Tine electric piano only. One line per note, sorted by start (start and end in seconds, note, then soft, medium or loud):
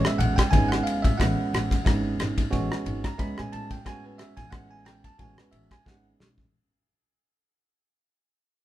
0.00 0.45 G#3 medium
0.00 0.45 B3 medium
0.00 0.45 C#4 medium
0.00 0.45 E4 medium
0.07 0.20 E5 medium
0.18 0.36 F#5 medium
0.36 0.51 G5 medium
0.51 1.11 G#3 medium
0.51 1.12 B3 medium
0.51 1.12 C#4 medium
0.51 1.11 E4 medium
0.51 0.69 G#5 medium
0.68 0.84 F#5 medium
0.83 1.02 F5 medium
1.02 1.18 E5 medium
1.17 1.78 G#3 medium
1.17 1.78 B3 medium
1.17 1.78 C#4 medium
1.17 1.78 E4 medium
1.17 2.14 F#5 medium
1.85 2.44 G#3 medium
1.85 2.44 B3 soft
1.85 2.45 C#4 medium
1.85 2.44 E4 medium
2.51 3.11 G#3 medium
2.51 3.11 B3 medium
2.51 3.11 C#4 medium
2.51 3.11 F#4 medium
3.04 3.19 A#5 medium
3.18 3.78 G#3 medium
3.18 3.78 B3 medium
3.18 3.78 C#4 medium
3.18 3.78 E4 medium
3.18 3.37 B5 medium
3.39 3.53 G#5 medium
3.53 3.70 A5 medium
3.71 3.86 G5 medium
3.85 4.45 G#3 medium
3.85 4.45 B3 medium
3.85 4.45 C#4 medium
3.85 4.45 F#4 medium
3.85 4.04 G#5 medium
4.05 4.19 B4 soft
4.18 4.36 E5 medium
4.37 4.52 G#5 medium
4.50 5.11 G#3 medium
4.50 5.11 B3 medium
4.50 5.11 C#4 soft
4.50 5.11 E4 medium
4.50 4.69 F#5 medium
4.71 4.85 G#5 medium
4.85 5.03 G5 medium
5.05 5.19 A5 medium
5.19 5.78 G#3 medium
5.19 5.78 B3 soft
5.19 5.78 C#4 soft
5.19 5.78 F#4 medium
5.19 5.38 G#5 medium
5.39 5.53 B4 soft
5.51 5.70 E5 medium
5.72 5.86 G#5 medium
5.86 6.45 G#3 medium
5.86 6.45 B3 medium
5.86 6.45 C#4 medium
5.86 6.45 E4 medium
5.86 6.07 F#5 medium